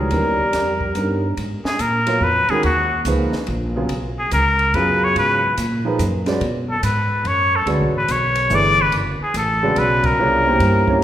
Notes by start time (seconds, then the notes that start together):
Already playing: G3
0.00 A#4
0.11 D#2 G3 B3 C#4 D#4 A#4, ride
0.39 muted upright bass stroke
0.53 F2, snare, hi-hat pedal, ride
0.81 kick
0.95 G2 G3 B3 C#4 D#4 A#4, hi-hat pedal, ride
1.37 G#2, ride
1.64 G#4, muted upright bass stroke, snare
1.79 A#2 A#4, hi-hat pedal, ride
2.07 F#3 B3 F4 A#4 C#5, ride
2.21 F2 B4
2.48 D#3 G#3 C#4 F#4 G#4 A#4, muted upright bass stroke, ride
2.63 D#2 F#4, ride
3.05 C#2 F3 A#3 D#4 G#4 B4, hi-hat pedal, ride
3.32 muted upright bass stroke, snare
3.47 A#1, ride
3.76 C#3 F#3 B3 F4 G#4
3.89 B1, ride
4.19 G#4
4.31 C#2 A#4, hi-hat pedal, ride
4.59 ride
4.74 F#2 C#3 F#3 B3 F4 G#4 B4, ride
5.04 C#5
5.16 G#2 B4, ride
5.58 A#2, hi-hat pedal, ride
5.85 F3 A#3 D#4 G#4 B4
5.99 F#2, hi-hat pedal, ride
6.26 G#3 C#4 F#4 B4 D5, snare, ride
6.41 B2, ride
6.70 A4
6.83 G#2 B4, hi-hat pedal, ride
7.24 F#2 C#5, ride
7.55 A4
7.66 D2 G#3 C#4 F#4 B4 D5, ride
7.80 B1
7.95 A1 B4
8.08 B1 C#5, hi-hat pedal, ride
8.35 ride
8.50 G1 E3 A3 D4 G#4 B4, hi-hat pedal
8.55 D5
8.82 B4
8.92 F#1, ride
9.20 G#4, muted upright bass stroke
9.34 A1 A4, hi-hat pedal, ride
9.63 C#3 G#3 F#4 B4 D5
9.76 B1 B4, ride
10.04 A#4, kick, ride
10.18 C2 B3 D4 F4 G#4 C#5
10.46 A#3 C#4 E4 G4 C5
10.60 G2, ride
10.87 A#3 C#4 E4 G4 C#5, kick